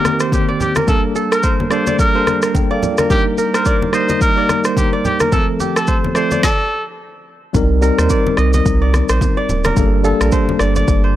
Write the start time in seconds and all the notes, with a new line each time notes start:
Already playing: D#3 A#3 C4 G4 A#4 C5 D5
0.05 cross-stick, high conga, shaker
0.20 C5, cross-stick, shaker
0.32 G4, kick, high conga, shaker
0.48 D5
0.60 G4, low conga, shaker
0.75 A#4, cross-stick, high conga, shaker
0.87 G3 A#3 D4 A4, kick, low conga, shaker
1.16 A4, shaker
1.32 A#4, cross-stick, shaker
1.43 C5, kick, shaker
1.60 high conga
1.70 G3 A#3 D4 A4 C5 D5, cross-stick, shaker
1.87 D5, high conga, shaker
1.99 A#4, kick, shaker
2.14 G3 A#3 D4 A4 C5
2.27 cross-stick, high conga, shaker
2.42 A#4, cross-stick, shaker
2.55 A#4 G5, kick, high conga, shaker
2.71 A4 D5 F5
2.82 F4 D5, low conga, shaker
2.98 D4 A#4, cross-stick, high conga, shaker
3.09 G3 A#3 D#4 G4 A#4, kick, low conga, shaker
3.38 A#4, shaker
3.54 A#4 C5, cross-stick, shaker
3.65 D5, kick, shaker
3.82 high conga
3.92 G3 A#3 D#4 A#4 C5 D#5, cross-stick, shaker
4.09 D#5, high conga, shaker
4.21 A#4, kick, shaker
4.36 G3 A#3 D#4 A#4 D5
4.49 cross-stick, high conga, shaker
4.64 C5, cross-stick, shaker
4.77 G4, kick, high conga, shaker
4.93 D5
5.05 G4, low conga, shaker
5.20 A#4, cross-stick, high conga, shaker
5.31 F3 A3 C4 A4, kick, low conga, shaker
5.60 G4, high conga, shaker
5.76 A4, cross-stick, shaker
5.87 C5, kick, shaker
6.04 high conga
6.14 F3 A3 C4 A4 C5 D5, cross-stick, shaker
6.31 D5, high conga, shaker
6.43 A4, kick, snare
7.53 C2 G3 C4 D#4 A#4, kick, low conga, shaker
7.81 G3 C4 D#4 A#4, shaker
7.98 D#2 C5, cross-stick, shaker
8.09 D5, kick, shaker
8.27 high conga
8.37 C2 D#5, cross-stick, shaker
8.53 D#5, high conga, shaker
8.66 C2, kick, shaker
8.82 D5
8.94 cross-stick, high conga, shaker
9.09 A#1 C5, cross-stick, shaker
9.21 kick, high conga, shaker
9.37 D5
9.49 D1, low conga, shaker
9.64 A#4, cross-stick, high conga, shaker
9.76 G1 G3 A#3 D4 A4, kick, low conga, shaker
10.03 G3 A#3 D4 A4, shaker
10.21 A#1 A#4, cross-stick, shaker
10.32 C5, kick, shaker
10.49 high conga
10.59 G1 D5, cross-stick, shaker
10.76 D5, high conga, shaker
10.88 G1, kick, shaker
11.04 C5